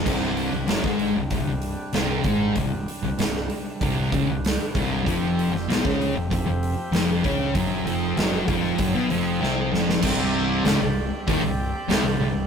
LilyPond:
<<
  \new Staff \with { instrumentName = "Tonewheel organ" } { \time 4/4 \key f \dorian \tempo 4 = 96 << { r1 | r1 | g'1 | aes'1 |
d''1 | } \\ { <c g d'>1~ | <c g d'>1 | <f c'>1~ | <f c'>1 |
<c' g'>1 | } >> }
  \new Staff \with { instrumentName = "Distorted electric guitar" } { \clef bass \time 4/4 \key f \dorian <c, c>8. c,16 <fis, fis>16 <aes, aes>8 c,16 c,16 c,8 r16 <c, c>8 <aes, aes>8 | c,8 r16 c,16 c,8 r8 <c, c>8 <des, des>16 c,8 r16 <c, c>8 | <f, f>8. f,16 <b, b>16 <des des'>8 f,16 f,16 f,8 r16 <f, f>8 <des des'>8 | <fis, fis>8 <f, f>8 <fis, fis>8 <f, f>8 <fis, fis>16 <b, b>16 <f, f>8 <c c'>8 <f, f>8 |
<c, c>4 <des, des>16 c,8 r16 <ees, ees>16 c,8 r16 <c, c>16 c,16 c,8 | }
  \new Staff \with { instrumentName = "Distorted electric guitar" } { \clef bass \time 4/4 \key f \dorian <c, c>8. c,16 <fis, fis>16 <aes, aes>8 c,16 c,16 c,8 r16 <c, c>8 <aes, aes>8 | c,8 r16 c,16 c,8 r8 <c, c>8 <des, des>16 c,8 r16 <c, c>8 | <f, f>8. f,16 <b, b>16 <des des'>8 f,16 f,16 f,8 r16 <f, f>8 <des des'>8 | <fis, fis>8 <f, f>8 <fis, fis>8 <f, f>8 <fis, fis>16 <b, b>16 <f, f>8 <c c'>8 <f, f>8 |
<c, c>4 <des, des>16 c,8 r16 <ees, ees>16 c,8 r16 <c, c>16 c,16 c,8 | }
  \new Staff \with { instrumentName = "Distorted electric guitar" } { \clef bass \time 4/4 \key f \dorian r1 | r1 | r1 | r1 |
<c, c>4 <des, des>16 c,8 r16 <ees, ees>16 c,8 r16 <c, c>16 c,16 c,8 | }
  \new Staff \with { instrumentName = "Fingered electric bass" } { \clef bass \time 4/4 \key f \dorian c,,8. c,,16 fis,,16 aes,,8 c,,16 c,,16 c,,8 r16 c,,8 aes,,8 | c,,8 r16 c,,16 c,,8 r8 c,,8 des,,16 c,,8 r16 c,,8 | f,,8. f,,16 b,,16 des,8 f,,16 f,,16 f,,8 r16 f,,8 des,8 | fis,,8 f,,8 fis,,8 f,,8 fis,,16 b,,16 f,,8 c,8 f,,8 |
c,,4 des,,16 c,,8 r16 ees,,16 c,,8 r16 c,,16 c,,16 c,,8 | }
  \new DrumStaff \with { instrumentName = "Drums" } \drummode { \time 4/4 <cymc hho bd>8 hho8 <hho sn>16 <bd sn>16 hho8 <hho bd>8 hho8 <hho sn>8 <hho bd>8 | <hho bd>8 hho8 <hho sn>16 sn16 hho8 <hho bd>8 <hho bd>8 <hho sn>8 <hho bd>8 | <hho bd>8 hho16 sn16 <hho sn>16 <bd sn>16 hho8 <hho bd>8 hho8 <hho sn>8 <hho bd>8 | <hho bd>8 hho8 <hho sn>8 <hho bd>8 <hho bd>8 hho8 sn8 sn16 sn16 |
<cymc bd>4 <hho sn>4 <hho bd>4 <hho sn>4 | }
>>